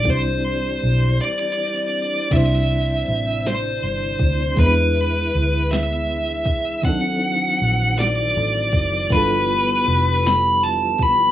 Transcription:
<<
  \new Staff \with { instrumentName = "Lead electric guitar" } { \time 6/8 \key c \major \tempo 4. = 53 c''4. d''4. | e''4. c''4. | b'4. e''4. | fis''4. d''4. |
b'4. b''8 a''8 b''8 | }
  \new Staff \with { instrumentName = "FM electric piano" } { \time 6/8 \key c \major <g c' d' e' c''>2. | <g c' d' e' c''>2. | <gis b d' e' b'>2. | <ees fis c' d' ees' a'>2. |
<g b d' f' a'>2. | }
  \new Staff \with { instrumentName = "Tonewheel organ" } { \clef bass \time 6/8 \key c \major << { <e g d'>2. | <e d'>2. | <gis e'>2. | <ees fis c'>2. |
<f g b>2. | } \\ { c'2. | c2. | e2.~ | e2.~ |
e2. | } >> }
  \new Staff \with { instrumentName = "Fingered electric bass" } { \clef bass \time 6/8 \key c \major c,4 b,,8 r4. | c,4 a,,4 g,,8 d,8 | e,4 d,4. c,8 | d,4 bes,,4 a,,8 fis,,8 |
g,,4 f,,4. b,,8 | }
  \new DrumStaff \with { instrumentName = "Drums" } \drummode { \time 6/8 <hh bd>8 hh8 hh8 r4. | <cymc hh bd>8 hh8 hh8 <hh sn>8 hh8 <hh bd>8 | <hh bd>8 hh8 hh8 <hh sn>8 hh8 <hh bd>8 | <hh bd>8 hh8 hh8 <hh sn>8 hh8 <hh bd>8 |
<hh bd>8 hh8 hh8 <hh sn>8 hh8 <hh bd>8 | }
>>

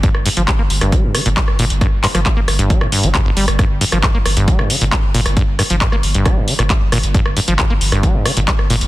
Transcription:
<<
  \new Staff \with { instrumentName = "Acid bass" } { \clef bass \time 4/4 \key g \minor \tempo 4 = 135 g,16 r16 g,16 f16 g16 bes16 r16 g,16 g16 g,16 d16 bes,16 g16 r16 bes,16 r16 | g,16 r16 g,16 f16 g16 bes16 r16 g,16 g16 g,16 g,16 g16 g,16 g,,16 g16 r16 | g,16 r16 g,16 f16 g,16 bes16 r16 g,16 g16 g,16 d16 bes,16 g16 r16 bes,16 r16 | g,16 r16 g,16 f16 g,16 bes16 r16 g,16 g16 g,16 d16 bes,16 g16 r16 bes,16 r16 |
g,16 r16 g,16 f16 g,16 bes16 r16 g,16 g16 g,16 d16 bes,16 g16 r16 bes,16 r16 | }
  \new Staff \with { instrumentName = "Sub bass" } { \clef bass \time 4/4 \key g \minor r16 g,,16 r16 g,,16 r16 g,,16 g,,16 g,,16 r16 g,,16 r16 g,,16 r16 g,,16 g,,16 g,,16 | r16 g,,16 r16 g,,16 r16 g,,16 g,,16 g,,16 r16 g,,16 r16 g,,16 r16 g,,16 g,,16 g,,16 | r16 g,,16 r16 g,,16 r16 g,,16 g,,16 g,,16 r16 g,,16 r16 g,,16 r16 g,,16 g,,16 g,,16 | r16 g,,16 r16 g,,16 r16 g,,16 g,,16 g,,16 r16 g,,16 r16 g,,16 r16 g,,16 g,,16 g,,16 |
r16 g,,16 r16 g,,16 r16 g,,16 g,,16 g,,16 r16 g,,16 r16 g,,16 r16 g,,16 g,,16 g,,16 | }
  \new DrumStaff \with { instrumentName = "Drums" } \drummode { \time 4/4 <hh bd>16 ss16 hho16 hh16 <hc hh bd ss>8 hho16 <hh ss>16 <hh bd>8 <hho ss>16 hh16 <hc hh bd>16 ss16 hho16 hh16 | <hh bd ss>8 <hc hho>16 <hh ss>16 <hc hh bd>8 <hho ss>16 hh16 <hh bd>16 ss16 hho16 hh16 <hc hh bd ss>8 hho16 <hh ss>16 | <hh bd ss>8 hho16 <hh ss>16 <hc hh bd>8 <hho ss>16 hh16 <hh bd>16 ss16 hho16 hh16 <hc hh bd ss>8 hho16 <hh ss>16 | <hh bd>8 <hho ss>16 hh16 <hc hh bd>16 ss16 hho16 hh16 <hh bd ss>8 hho16 <hh ss>16 <hc hh bd>8 <hho ss>16 hh16 |
<hh bd>16 ss16 hho16 hh16 <hc hh bd ss>8 hho16 <hh ss>16 <hh bd>8 <hho ss>16 hh16 <hc hh bd>16 ss16 hho16 hh16 | }
>>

